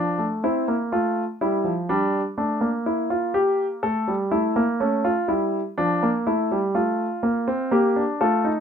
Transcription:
Already playing: F3 D4
0.18 A3
0.44 C4 E4
0.68 A#3
0.92 A3 F4
1.41 G3 E4
1.64 F3
1.89 G3 D4
2.38 A3 D4
2.61 A#3
2.86 E4
3.10 F4
3.34 G4
3.83 A3 A4
4.08 G3
4.31 A3 E4
4.56 A#3
4.80 A3 C#4
5.05 F4
5.28 G3 E4
5.78 F3 D4
6.03 A#3
6.27 A3 E4
6.51 G3
6.75 A3 F4
7.23 A#3
7.48 C4
7.71 A#3 G4
7.96 D4
8.21 A3 F4 A4
8.45 D#4

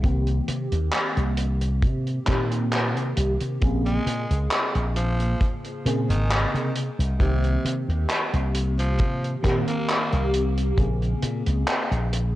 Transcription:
0.02 C2 D#3 A#3 C4 G4, kick, closed hi-hat
0.27 closed hi-hat
0.48 C3, closed hi-hat
0.72 D#2, closed hi-hat
0.93 clap, closed hi-hat
1.17 C2, closed hi-hat
1.37 closed hi-hat
1.61 closed hi-hat
1.83 C3, kick, closed hi-hat
2.07 closed hi-hat
2.26 A#2 D#3 A#3 C4 G4, kick, clap, closed hi-hat
2.52 closed hi-hat
2.72 clap, closed hi-hat
2.96 C3, closed hi-hat
3.17 C2, closed hi-hat
3.40 C3, closed hi-hat
3.60 A#1 C#3 A#3 C4 G#4, kick, closed hi-hat
3.86 G#3, closed hi-hat
4.06 A#2, closed hi-hat
4.31 C#2, closed hi-hat
4.51 clap, closed hi-hat
4.75 A#1, closed hi-hat
4.96 F3, closed hi-hat
5.20 closed hi-hat
5.41 kick, closed hi-hat
5.65 closed hi-hat
5.85 A#2 C#3 A#3 C4 G#4, closed hi-hat
6.10 G#1 D#3, closed hi-hat
6.31 clap, closed hi-hat
6.54 C3, closed hi-hat
6.76 closed hi-hat
6.99 C2, closed hi-hat
7.19 C2 C3 D#3 A#3 C4 G4, kick, closed hi-hat
7.44 closed hi-hat
7.65 C3, closed hi-hat
7.88 D#2, closed hi-hat
8.10 clap, closed hi-hat
8.33 C2, closed hi-hat
8.55 closed hi-hat
8.79 F3, closed hi-hat
8.99 C3, kick, closed hi-hat
9.24 closed hi-hat
9.42 A#2 D#3 A#3 C4 G4, kick, clap, closed hi-hat
9.68 A#3, closed hi-hat
9.89 clap, closed hi-hat
10.12 C2, closed hi-hat
10.34 closed hi-hat
10.58 closed hi-hat
10.77 A#1 C#3 A#3 C4 G#4, kick, closed hi-hat
11.02 closed hi-hat
11.22 A#2, closed hi-hat
11.46 C#2, closed hi-hat
11.67 clap, closed hi-hat
11.91 A#1, closed hi-hat
12.13 closed hi-hat

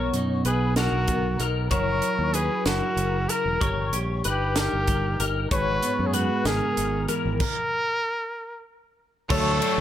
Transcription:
Already playing: B1 B2 D#4 F#4 A#4 C#5
0.13 F#2 D#4, closed hi-hat
0.45 B1 F#3 G#4 B4, closed hi-hat
0.76 D#4 F#4 A#4, snare, closed hi-hat
0.92 B1
1.08 B2, kick, closed hi-hat
1.39 B1 D#4 A#4, closed hi-hat
1.70 F#1 F#3 E4 A#4 C#5, kick, closed hi-hat
2.02 E4, closed hi-hat
2.19 D#2
2.33 C#4 G#4 B4, closed hi-hat
2.66 F#1 E4 F#4 A#4, snare, closed hi-hat
2.96 F#1 C#3, closed hi-hat
3.29 E4 A#4, closed hi-hat
3.46 E1
3.61 G1 G3 G4 C#5, kick, closed hi-hat
3.93 A#1 G4, closed hi-hat
4.24 G1 D#4 B4, closed hi-hat
4.30 G4
4.56 D#4 G4 A#4, snare, closed hi-hat
4.73 G1
4.87 G3, kick, closed hi-hat
5.20 G1 D#4 A#4, closed hi-hat
5.51 G#1 G#2 F#4 B4 C#5, kick, closed hi-hat
5.82 B3, closed hi-hat
5.99 F#2
6.07 G#4
6.13 G#3 F#4 B4, closed hi-hat
6.44 G#1 C#3 G#4 A#4, snare, closed hi-hat
6.77 G#1 D#3, closed hi-hat
7.08 E3 A#4, closed hi-hat
7.25 G#1
7.40 A#4, kick, crash
9.30 D2 D3 F#3 A3 D4 A4 C#5, kick, crash
9.62 F#3 A3 D4, ride

